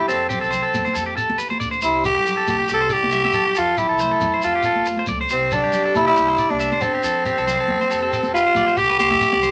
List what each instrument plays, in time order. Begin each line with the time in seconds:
Already playing: nylon-string guitar C4
0.08 upright bass F2, nylon-string guitar F3 C4 F4, tenor saxophone C4, clean electric guitar A4, shekere
0.12 nylon-string guitar A4
0.29 tenor saxophone C4, clean electric guitar G4, low conga, shekere
0.33 nylon-string guitar A4
0.41 upright bass C2, clean electric guitar A4, shekere
0.51 nylon-string guitar C4, clean electric guitar C5, low conga, shekere
0.62 clean electric guitar A4
0.74 upright bass F2, nylon-string guitar A4, high conga, low conga, shekere
0.85 clean electric guitar C5, high conga, shekere
0.94 upright bass F2, nylon-string guitar C3 A4, clean electric guitar A4, shekere
1.06 clean electric guitar G4
1.17 clean electric guitar A4, nylon-string guitar A4, shekere
1.30 upright bass F2, high conga
1.38 nylon-string guitar E3, clean electric guitar B4, shekere
1.50 clean electric guitar C5, high conga
1.60 upright bass D2, nylon-string guitar D3, clean electric guitar D5, shekere
1.71 clean electric guitar C5, shekere
1.82 upright bass C2, nylon-string guitar C3 G3 C4, tenor saxophone E4, clean electric guitar C5, shekere
2.04 nylon-string guitar E4, tenor saxophone G4, low conga, shekere
2.15 upright bass G2, clean electric guitar G4
2.25 nylon-string guitar G3, clean electric guitar G4, low conga, shekere
2.37 clean electric guitar A4
2.47 upright bass C2, nylon-string guitar E4, tenor saxophone G4, high conga, low conga, shekere
2.59 clean electric guitar G4
2.68 upright bass C2, nylon-string guitar G2 G4, clean electric guitar G4, shekere
2.74 tenor saxophone A4
2.81 clean electric guitar C5
2.89 nylon-string guitar E4, tenor saxophone G4, clean electric guitar D5, shekere
3.03 upright bass C2, high conga
3.11 nylon-string guitar G3 E4, clean electric guitar E5, shekere
3.24 clean electric guitar E5, high conga
3.33 upright bass E2, nylon-string guitar E4, clean electric guitar A4, low conga, shekere
3.46 clean electric guitar G4
3.55 upright bass F2, nylon-string guitar F3, tenor saxophone F4, clean electric guitar A4, shekere
3.77 nylon-string guitar C4, tenor saxophone E4, clean electric guitar G4, low conga, shekere
3.89 upright bass C2, clean electric guitar A4
3.99 nylon-string guitar A3, clean electric guitar C5, low conga, shekere
4.11 clean electric guitar A4
4.21 upright bass F2, nylon-string guitar C4, high conga, low conga, shekere
4.34 clean electric guitar C5
4.42 upright bass F2, nylon-string guitar C3 C4, tenor saxophone F4, clean electric guitar A4, shekere
4.56 clean electric guitar G4
4.63 nylon-string guitar C4, clean electric guitar A4, shekere
4.76 upright bass F2, high conga
4.86 nylon-string guitar A3 C4, muted clean electric guitar stroke, shekere
4.97 clean electric guitar C5, high conga
5.07 upright bass C#2, nylon-string guitar A4, clean electric guitar D5, low conga, shekere
5.21 clean electric guitar C5
5.29 upright bass C2, nylon-string guitar C3, tenor saxophone C4, clean electric guitar C5, shekere
5.51 tenor saxophone D4, nylon-string guitar G4, clean electric guitar A4, low conga, shekere
5.64 upright bass G2, clean electric guitar G4
5.72 nylon-string guitar G3, clean electric guitar G4, low conga, shekere
5.85 clean electric guitar A4
5.95 upright bass C2, nylon-string guitar C4, tenor saxophone E4, high conga, low conga, shekere
6.06 tenor saxophone E4, clean electric guitar G4
6.16 upright bass C2, nylon-string guitar G2 C4, clean electric guitar G4, shekere
6.29 clean electric guitar C5
6.37 nylon-string guitar C4, clean electric guitar D5, shekere
6.50 upright bass C2, tenor saxophone D4, high conga
6.59 nylon-string guitar D3, clean electric guitar E5, shekere
6.72 clean electric guitar C5, high conga
6.81 upright bass E2, tenor saxophone C4, clean electric guitar A4, low conga, shekere
6.94 clean electric guitar G4
7.03 upright bass F2, nylon-string guitar F3, clean electric guitar A4, shekere
7.25 clean electric guitar G4, nylon-string guitar A4, low conga, shekere
7.37 upright bass C2, clean electric guitar A4, shekere
7.47 nylon-string guitar C4, clean electric guitar C5, low conga, shekere
7.60 clean electric guitar A4
7.68 upright bass F2, nylon-string guitar A4, high conga, low conga
7.80 clean electric guitar C5, high conga, shekere
7.89 upright bass F2, nylon-string guitar C3 G4, clean electric guitar A4, shekere
8.00 nylon-string guitar A4, clean electric guitar A4
8.10 nylon-string guitar A4, clean electric guitar A4, shekere
8.23 upright bass F2, high conga, shekere
8.32 nylon-string guitar C4 G4, tenor saxophone F4, clean electric guitar B4, shekere
8.45 nylon-string guitar A4, clean electric guitar C5
8.55 upright bass F2, clean electric guitar D5, muted nylon-string guitar stroke, high conga, low conga, shekere
8.67 clean electric guitar C5, shekere
8.76 upright bass C2, nylon-string guitar C3, tenor saxophone G4, clean electric guitar G4, shekere
8.90 upright bass C2, clean electric guitar B4
8.99 upright bass C2, nylon-string guitar D4, tenor saxophone G4, clean electric guitar C5, high conga, shekere
9.10 upright bass G2, nylon-string guitar E4, clean electric guitar E5, high conga
9.21 nylon-string guitar G3, shekere
9.33 upright bass C2, clean electric guitar D5, high conga
9.42 nylon-string guitar C4, clean electric guitar C5, low conga, shekere